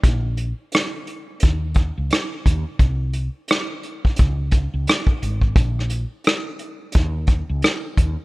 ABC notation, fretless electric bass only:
X:1
M:4/4
L:1/16
Q:"Swing 16ths" 1/4=87
K:Db
V:1 name="Fretless electric bass" clef=bass
B,,,3 z4 z E,,3 D,, z2 E,, z | C,,3 z4 z D,,3 D,, z2 A,,,2 | B,,,3 z4 z E,,3 D,, z2 E,, z |]